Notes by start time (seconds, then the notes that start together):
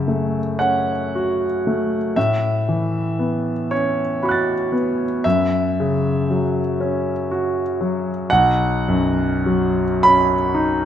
Already playing: F#2 C#3 E5
0.08 A3
0.59 C#4 F#5
1.15 F#4
1.67 A3
2.16 A2 E5
2.69 E3
3.19 B3
3.71 C#4 C#5
4.23 F#4 B5 C#6
4.29 F#6 A6
4.72 B3
5.24 F#2 E5
5.80 C#3
6.31 F#3
6.81 C#4
7.31 F#4
7.81 F#3
8.30 B1 F#5
8.88 F#2
9.46 F#3
10.03 C#4 B5
10.54 D#4